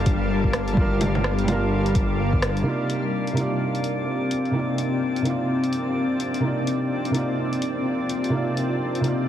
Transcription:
Already playing: detuned saw bass G1, felt piano G3 F4 A#4, ambient pad G3 G4 A#4 F5 A5, synth texture D4 D6
0.06 kick, closed hi-hat
0.44 kick
0.53 cross-stick, closed hi-hat
0.68 closed hi-hat
0.73 felt piano G3 F4
0.77 felt piano A#4, kick
1.01 closed hi-hat, low bongo
1.15 low bongo
1.24 cross-stick
1.39 closed hi-hat
1.44 felt piano G3
1.48 felt piano F4 A#4, closed hi-hat, low bongo
1.86 closed hi-hat
1.95 kick, closed hi-hat
2.33 kick
2.42 cross-stick, closed hi-hat
2.57 closed hi-hat
2.62 felt piano C3 A#3 D#4, ambient pad C4, synth texture D4 D6
2.68 felt piano F4 D5
2.84 ambient pad D5
2.90 closed hi-hat
3.08 ambient pad F4
3.27 closed hi-hat
3.33 felt piano C3 A#3
3.37 felt piano D#4 F4 D5, closed hi-hat
3.75 closed hi-hat
3.84 closed hi-hat
4.31 closed hi-hat
4.46 closed hi-hat
4.51 felt piano C3 A#3 D#4
4.57 felt piano F4 D5
4.78 closed hi-hat
5.16 closed hi-hat
5.22 felt piano C3 A#3, closed hi-hat
5.26 felt piano D#4 F4 D5
5.64 closed hi-hat
5.73 closed hi-hat
6.20 closed hi-hat
6.34 closed hi-hat
6.40 felt piano C3 A#3
6.44 felt piano D#4 F4 D5
6.67 closed hi-hat
7.05 closed hi-hat
7.11 felt piano C3 A#3 D#4, closed hi-hat
7.17 felt piano F4 D5
7.53 closed hi-hat
7.62 closed hi-hat
8.09 closed hi-hat
8.24 closed hi-hat
8.29 felt piano C3 A#3
8.33 felt piano D#4 F4 D5
8.57 closed hi-hat
8.95 closed hi-hat
9.00 felt piano C3 A#3, closed hi-hat
9.04 felt piano D#4 F4 D5

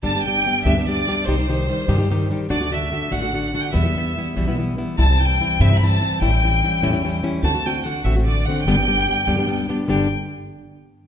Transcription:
0.03 upright bass G1, nylon-string guitar G2 D3 G3 B3 D4 G4, violin section A5
0.15 nylon-string guitar G3 B3 D4 G4
0.26 nylon-string guitar G3 B3 D4 G4, violin section G5
0.46 nylon-string guitar G3 B3 D4 G4
0.65 upright bass D2, nylon-string guitar G2 D3 G3 B3 D4 G4, violin section E5
0.77 nylon-string guitar G3 B3 D4 G4, violin section E5
0.88 nylon-string guitar G3 B3 D4 G4, violin section D5
1.07 nylon-string guitar G3 B3 D4 G4
1.27 upright bass C2, nylon-string guitar C3 D#3 G3 D#4 G4, violin section C5
1.38 nylon-string guitar G3 D#4 G4
1.48 nylon-string guitar D#3 G3 D#4 G4
1.68 nylon-string guitar D#3 G3 D#4 G4
1.88 upright bass G2, nylon-string guitar C3 D#3 G3 D#4 G4
1.98 nylon-string guitar G3 D#4 G4
2.10 nylon-string guitar D#3 G3 D#4 G4
2.30 nylon-string guitar D#3 G3 D#4 G4
2.50 upright bass D2, nylon-string guitar D3 A3 D4 F#4, violin section D5
2.61 nylon-string guitar A3 D4 F#4
2.71 nylon-string guitar D3 A3 D4 F#4, violin section E5
2.91 nylon-string guitar D3 A3 D4 F#4
3.11 upright bass A1, nylon-string guitar D3 A3 D4 F#4, violin section F#5
3.22 nylon-string guitar A3 D4 F#4
3.33 nylon-string guitar D3 A3 D4 F#4
3.54 nylon-string guitar D3 A3 D4 F#4, violin section F#5
3.60 violin section G5
3.65 violin section F#5
3.73 nylon-string guitar E2 B2 E3 G3 B3 E4, upright bass E2, violin section E5
3.85 nylon-string guitar E3 G3 B3 E4
3.96 nylon-string guitar E3 G3 B3 E4
4.17 nylon-string guitar E3 G3 B3 E4
4.36 upright bass B1, nylon-string guitar E2 B2 E3 G3 B3 E4
4.48 nylon-string guitar E3 G3 B3 E4
4.58 nylon-string guitar E3 G3 B3 E4
4.77 nylon-string guitar E3 G3 B3 E4
4.98 upright bass C2, nylon-string guitar C3 E3 G3 C4 E4, violin section A5
5.09 nylon-string guitar G3 C4 E4
5.20 nylon-string guitar E3 G3 C4 E4, violin section G5
5.40 nylon-string guitar E3 G3 C4 E4
5.60 upright bass G2, nylon-string guitar C3 E3 G3 C4 E4, violin section E5
5.72 nylon-string guitar G3 C4 E4, violin section B5
5.81 nylon-string guitar E3 G3 C4 E4, violin section A5
6.01 nylon-string guitar E3 G3 C4 E4
6.21 upright bass A1, nylon-string guitar A2 E3 G3 C#4 E4, violin section G5
6.33 nylon-string guitar G3 C#4 E4
6.44 nylon-string guitar E3 G3 C#4 E4
6.64 nylon-string guitar E3 G3 C#4 E4
6.82 upright bass E2, nylon-string guitar A2 E3 G3 C#4 E4
6.93 nylon-string guitar G3 C#4 E4
7.04 nylon-string guitar E3 G3 C#4 E4
7.23 nylon-string guitar E3 G3 C#4 E4
7.42 upright bass D2, nylon-string guitar D3 A3 C4 F#4, violin section A5
7.54 nylon-string guitar A3 C4 F#4
7.65 nylon-string guitar D3 A3 C4 F#4, violin section G5
7.85 nylon-string guitar D3 A3 C4 F#4, violin section F#5
8.04 upright bass A1, nylon-string guitar D3 A3 C4 F#4, violin section E5
8.16 nylon-string guitar A3 C4 F#4
8.26 nylon-string guitar D3 A3 C4 F#4, violin section D5
8.46 nylon-string guitar D3 A3 C4 F#4, violin section F#5
8.65 upright bass G1, nylon-string guitar G2 D3 G3 B3 D4 G4, violin section G5
8.77 nylon-string guitar G3 B3 D4 G4
8.87 nylon-string guitar G3 B3 D4 G4
9.08 nylon-string guitar G3 B3 D4 G4
9.27 upright bass D2, nylon-string guitar G2 D3 G3 B3 D4 G4
9.37 nylon-string guitar G3 B3 D4 G4
9.47 nylon-string guitar G3 B3 D4 G4
9.68 nylon-string guitar G3 B3 D4 G4
9.88 upright bass G1, nylon-string guitar G2 D3 G3 B3 D4 G4, violin section G5

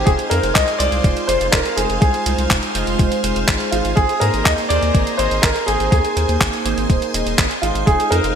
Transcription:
Already playing: analog polysynth G#3 D#4 F4 C5, string machine C5
0.06 analog synth bass F1, grand piano G#4, string machine F5 G#5 C6, kick, closed hi-hat
0.19 closed hi-hat
0.30 analog synth bass F2, analog polysynth G#3 D#4 F4 C5, grand piano A#4, closed hi-hat
0.43 analog synth bass F1, closed hi-hat
0.54 analog synth bass C2, grand piano D#5, kick, clap, closed hi-hat
0.68 closed hi-hat
0.79 analog synth bass C2, analog polysynth G#3 D#4 F4 C5, grand piano D5, closed hi-hat
0.92 analog synth bass C2, closed hi-hat
1.04 analog synth bass F1, kick, closed hi-hat
1.17 closed hi-hat
1.27 analog synth bass F1, analog polysynth G#3 D#4 F4 D5, grand piano C5, closed hi-hat
1.41 analog synth bass F1, closed hi-hat
1.52 analog synth bass F1, grand piano A#4, kick, clap, closed hi-hat
1.65 closed hi-hat
1.76 analog synth bass F1, analog polysynth G#3 D#4 F4 C5, grand piano G#4, closed hi-hat
1.90 analog synth bass F1, closed hi-hat
2.01 analog synth bass C2, grand piano G#4, string machine F6, kick, closed hi-hat
2.14 closed hi-hat
2.26 analog synth bass C2, analog polysynth G#3 D#4 F4 C5, closed hi-hat
2.38 analog synth bass C2, closed hi-hat
2.51 analog synth bass F1, kick, clap, closed hi-hat
2.63 closed hi-hat
2.75 analog synth bass F1, analog polysynth G#3 D#4 F4 C5, closed hi-hat
2.87 analog synth bass F1, closed hi-hat
2.99 analog synth bass F1, kick, closed hi-hat
3.12 closed hi-hat
3.24 analog synth bass F1, analog polysynth G#3 D#4 F4 C5, closed hi-hat
3.36 analog synth bass F1, closed hi-hat
3.48 analog synth bass G#1, kick, clap, closed hi-hat
3.60 closed hi-hat
3.71 analog synth bass G#1, analog polysynth G#3 D#4 F4 C5, grand piano F4, closed hi-hat
3.85 analog synth bass G#1, closed hi-hat
3.96 analog synth bass G#1, grand piano G#4, string machine A#5, kick, closed hi-hat
4.09 closed hi-hat
4.20 analog synth bass G#2, analog polysynth A#3 D#4 G#4 C5, grand piano A#4, closed hi-hat
4.34 analog synth bass G#1, closed hi-hat
4.44 analog synth bass D#2, grand piano D#5, kick, clap, closed hi-hat
4.58 closed hi-hat
4.69 analog synth bass D#2, analog polysynth A#3 D#4 G#4 C5, grand piano D5, closed hi-hat
4.83 analog synth bass D#2, closed hi-hat
4.95 analog synth bass G#1, kick, closed hi-hat
5.07 closed hi-hat
5.17 analog synth bass G#1, analog polysynth A#3 D#4 G#4 D#5, grand piano C5, closed hi-hat
5.31 analog synth bass G#1, closed hi-hat
5.42 analog synth bass G#1, grand piano A#4, kick, clap, closed hi-hat
5.56 closed hi-hat
5.66 analog synth bass G#1, analog polysynth A#3 D#4 G#4 C5, grand piano G#4, closed hi-hat
5.80 analog synth bass G#1, closed hi-hat
5.91 analog synth bass D#2, grand piano G#4, string machine C6, kick, closed hi-hat
6.05 closed hi-hat
6.16 analog synth bass D#2, analog polysynth A#3 D#4 G#4 C5, closed hi-hat
6.29 analog synth bass D#2, closed hi-hat
6.41 analog synth bass G#1, kick, clap, closed hi-hat
6.53 closed hi-hat
6.65 analog synth bass G#1, analog polysynth A#3 D#4 G#4 C5, closed hi-hat
6.78 analog synth bass G#1, closed hi-hat
6.90 analog synth bass D#1, kick, closed hi-hat
7.02 closed hi-hat
7.14 analog synth bass D#1, analog polysynth A#3 D#4 G#4 D#5, closed hi-hat
7.26 analog synth bass D#1, closed hi-hat
7.38 analog synth bass G#1, kick, clap, closed hi-hat
7.51 closed hi-hat
7.62 analog synth bass G#1, analog polysynth G#3 D#4 F4 C5, grand piano F4, closed hi-hat
7.75 analog synth bass G#1, closed hi-hat
7.86 analog synth bass F1, grand piano G#4, string machine C5 F5, kick, closed hi-hat
8.00 closed hi-hat
8.11 analog synth bass F2, analog polysynth G#3 D#4 F4 C5, grand piano A#4, closed hi-hat
8.24 analog synth bass F1, closed hi-hat

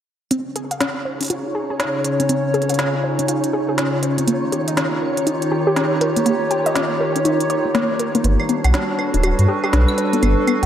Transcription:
0.31 ambient pad C#3, synth arpeggio sound C4, synth texture C#5, closed hi-hat
0.51 ambient pad C#4
0.56 synth arpeggio sound G#4, closed hi-hat
0.71 synth arpeggio sound F5, closed hi-hat
0.81 synth arpeggio sound C#4, ambient pad D#4, snare, closed hi-hat
0.99 ambient pad F4
1.05 synth arpeggio sound C5
1.21 synth arpeggio sound C#4, closed hi-hat
1.23 closed hi-hat
1.25 closed hi-hat
1.26 closed hi-hat
1.28 synth arpeggio sound F4, closed hi-hat
1.30 closed hi-hat
1.38 ambient pad C#5
1.55 synth arpeggio sound G#4
1.70 synth arpeggio sound G#4
1.80 synth arpeggio sound C#4, snare, closed hi-hat
2.04 synth arpeggio sound C5, closed hi-hat
2.20 synth arpeggio sound C4, closed hi-hat
2.29 synth arpeggio sound C4, closed hi-hat
2.54 synth arpeggio sound G#4, closed hi-hat
2.62 closed hi-hat
2.69 synth arpeggio sound F5, closed hi-hat
2.74 closed hi-hat
2.79 synth arpeggio sound C#4, snare, closed hi-hat
3.04 synth arpeggio sound C5
3.19 synth arpeggio sound C#4, closed hi-hat
3.28 synth arpeggio sound F4, closed hi-hat
3.44 closed hi-hat
3.53 synth arpeggio sound G#4
3.69 synth arpeggio sound G#4
3.78 synth arpeggio sound C#4, snare, closed hi-hat
4.03 synth arpeggio sound C5, closed hi-hat
4.18 synth arpeggio sound C4, closed hi-hat
4.28 ambient pad D#3, synth arpeggio sound A#3, closed hi-hat
4.52 synth arpeggio sound G4, closed hi-hat
4.60 ambient pad C#5
4.68 synth arpeggio sound D#5, closed hi-hat
4.77 synth arpeggio sound C#4, snare, closed hi-hat
5.02 ambient pad G4, synth arpeggio sound A#4
5.17 synth arpeggio sound C#4, closed hi-hat
5.27 synth arpeggio sound D#4, closed hi-hat
5.42 closed hi-hat
5.51 synth arpeggio sound G4
5.67 synth arpeggio sound G4
5.76 synth arpeggio sound C#4, snare, closed hi-hat
6.01 synth arpeggio sound A#4, closed hi-hat
6.16 synth arpeggio sound A#3, closed hi-hat
6.26 synth arpeggio sound A#3, closed hi-hat
6.51 synth arpeggio sound G4, closed hi-hat
6.66 synth arpeggio sound D#5, closed hi-hat
6.75 synth arpeggio sound C#4, snare, closed hi-hat
7.00 synth arpeggio sound A#4
7.16 synth arpeggio sound C#4, closed hi-hat
7.25 synth arpeggio sound D#4, closed hi-hat
7.40 closed hi-hat
7.50 synth arpeggio sound C#5, closed hi-hat
7.65 synth arpeggio sound A#3
7.75 synth arpeggio sound A#3, snare, closed hi-hat
7.99 synth arpeggio sound A#4, closed hi-hat
8.15 synth arpeggio sound A#3, closed hi-hat
8.24 sub bass G1, ambient pad G3, synth arpeggio sound B3, closed hi-hat
8.29 ambient pad D4
8.40 claves
8.45 synth arpeggio sound B3, ambient pad F#4, closed hi-hat
8.64 sub bass B1, synth arpeggio sound F#5, closed hi-hat, claves
8.74 synth arpeggio sound D4, snare, closed hi-hat
8.81 ambient pad A4
8.99 synth arpeggio sound B4, claves
9.05 ambient pad B4
9.14 sub bass D1, synth arpeggio sound D4, closed hi-hat
9.23 synth arpeggio sound F#4, closed hi-hat, claves
9.39 sub bass G2, closed hi-hat
9.48 synth arpeggio sound G4
9.64 synth arpeggio sound G4, claves
9.73 sub bass B1, synth arpeggio sound D4, snare, closed hi-hat
9.88 claves
9.98 synth arpeggio sound B4, closed hi-hat
10.13 synth arpeggio sound B3, closed hi-hat
10.23 sub bass G1, synth arpeggio sound B3, closed hi-hat, claves
10.47 synth arpeggio sound B3, closed hi-hat, claves
10.63 sub bass B1, synth arpeggio sound F#5

